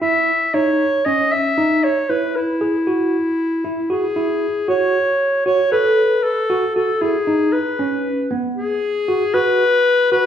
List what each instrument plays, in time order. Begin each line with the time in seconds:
0.02 tine electric piano E4, clarinet E5
0.54 tine electric piano D#4, clarinet C#5
1.05 tine electric piano C#4, clarinet D#5
1.32 clarinet E5
1.58 tine electric piano D#4
1.84 clarinet C#5
2.10 tine electric piano E4, clarinet B4
2.36 clarinet E4
2.61 tine electric piano G#4
2.87 tine electric piano F#4
3.64 tine electric piano E4
3.90 tine electric piano F#4, clarinet G#4
4.16 tine electric piano E4
4.68 tine electric piano F#4, clarinet C#5
5.46 tine electric piano F#4, clarinet C#5
5.72 tine electric piano A4, clarinet B4
6.23 clarinet A4
6.50 tine electric piano F#4
6.75 tine electric piano F#4, clarinet A4
7.01 tine electric piano E4, clarinet G#4
7.27 tine electric piano D#4
7.53 clarinet B4
7.79 tine electric piano C#4
8.31 tine electric piano B3
8.56 clarinet G#4
9.08 tine electric piano F#4
9.34 tine electric piano F#4, clarinet B4
10.12 tine electric piano F#4, clarinet B4